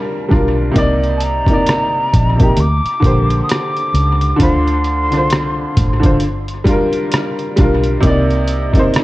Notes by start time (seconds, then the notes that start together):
Already playing: G3 D4 F4 A#4
0.29 B1 G3 D4, kick, cross-stick
0.33 F4 A#4
0.71 C3 A#3
0.76 C2 D#4 D5, kick, closed hi-hat
1.04 closed hi-hat
1.17 A5, closed hi-hat
1.23 A#5
1.47 G1 C3 A#3, kick, closed hi-hat
1.51 D#4 D5
1.66 cross-stick, closed hi-hat
2.13 A#1, kick, closed hi-hat
2.36 C3 A#3, closed hi-hat
2.40 D#4 G4, kick
2.57 D2 D6, closed hi-hat
2.85 closed hi-hat
3.00 A#1 D3 A#3, kick
3.04 G4 C5, closed hi-hat
3.30 closed hi-hat
3.43 D#6
3.49 D6, cross-stick, closed hi-hat
3.76 closed hi-hat
3.94 C#2, closed hi-hat
4.21 closed hi-hat
4.36 D2 D3 D4, kick, closed hi-hat
4.41 F4 C5 C6
4.67 closed hi-hat
4.84 closed hi-hat
5.11 C2 D3 D4, cross-stick, closed hi-hat
5.15 F4 C5
5.30 cross-stick, closed hi-hat
5.77 A1, kick, closed hi-hat
5.99 D3 D4, closed hi-hat
6.04 F4 C5, kick
6.20 G1, closed hi-hat
6.48 closed hi-hat
6.64 G3 D4, kick, closed hi-hat
6.69 F4 A#4
6.93 closed hi-hat
7.12 cross-stick, closed hi-hat
7.39 closed hi-hat
7.56 B1 G3 D4, kick, cross-stick, closed hi-hat
7.61 F4 A#4
7.84 closed hi-hat
8.00 C2 C3 A#3, kick, closed hi-hat
8.05 D#4 D5
8.30 closed hi-hat
8.47 closed hi-hat
8.72 G1 C3 A#3, kick, closed hi-hat
8.77 D#4 C5
8.94 cross-stick, closed hi-hat